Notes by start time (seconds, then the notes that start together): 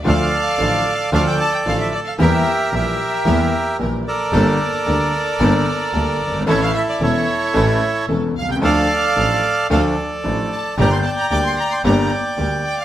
0.04 D2 D3 F3 A3 D4 F4 A4 D5 F5
0.58 A1 A2 D3 F3 A3 D4 F4 A4
1.12 D2 D3 F3 A3 D4 F4 A4 D5 F5
1.27 G5
1.39 A5
1.52 G5
1.66 A1 A2 D3 F3 A3 D4 F4 A4 F5
1.79 E5
1.93 D5
2.06 F5
2.19 E2 E3 G3 A#3 E4 G4 A#4 E5
2.72 A#1 A#2 E3 G3 A#3 E4 G4 A#4 E5
2.76 G4 A#4
3.25 E2 E3 G3 A#3 E4 G4 A#4
3.78 A#1 A#2 E3 G3 A#3 E4 G4 A#4
4.06 A4 A#4 D5
4.32 G1 G2 G3 A#3 D4 G4 A4
4.86 D2 D3 G3 A#3 D4 G4 A4
5.39 G1 G2 G3 A#3 D4 G4 A4
5.93 D2 D3 G3 A#3 D4 G4 A4
6.21 G1
6.27 F#1
6.34 G1
6.40 G#1
6.46 A1 A2 E3 A3 C#4 E4 A4 C#5
6.60 F5
6.75 E5
6.89 D5
7.00 E1 E2 E3 A3 C#4 E4 A4 C#5
7.54 A1 A2 E3 A3 C#4 E4 A4
8.08 E1 E2 E3 A3 C#4 E4 A4
8.36 C2 F5
8.42 B1
8.49 C2 G5
8.56 C#2
8.61 D2 D3 F3 A3 D4 F4 A4 D5 F5
9.16 A1 A2 F3 A3 D4 F4 A4
9.70 D2 D3 F3 A3 D4 F4 A4 D5 F5
10.24 A1 A2 F3 A3 D4 F4 A4
10.52 A5
10.77 G1 G2 D3 G3 A#3 D4 G4 D5 A#5
10.81 G5
10.91 C6
11.04 A5
11.18 A#5
11.30 D2 D3 G3 A#3 D4 G4 D6
11.44 C6
11.57 A#5
11.70 C6
11.84 G1 G2 D3 G3 A#3 D4 G4 D5 G5 A#5
12.37 D2 D3 G3 A#3 D4 G4
12.65 G5
12.78 F5